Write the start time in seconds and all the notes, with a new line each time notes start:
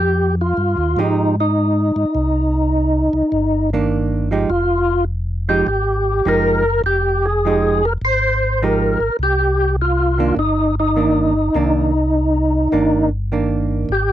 Already playing: F2 G4
0.41 F4
0.57 G2
0.77 D#2
0.97 G#2 F3 G#3 D#4 G4
1.40 D#4
1.96 G#2
2.15 C2
3.13 C2
3.32 G1
3.73 D#3 A#3 D4
4.31 F3 G#3 D#4 G4
4.50 F1 F4
5.49 F3 G#3 D#4 G4
5.67 G#1 G4
6.25 F#1 F3 G#3 D#4 G4 A#4
6.84 F1 G4
7.26 G#4
7.45 F3 G#3 D#4 G4
7.85 A#4
8.02 G#1 C5
8.62 F3 G#3 D#4 G4 A#4
9.00 G#1
9.19 C2
9.23 G4
9.82 F4
10.18 D#3 A#3 D4
10.37 G1 D#4
10.80 D#4
10.96 D#3 A#3 D4
11.55 C2 D#3 A#3 D4
12.72 G1 D#3 A#3 D4
13.32 D#3 A#3 D4
13.89 G#1 G4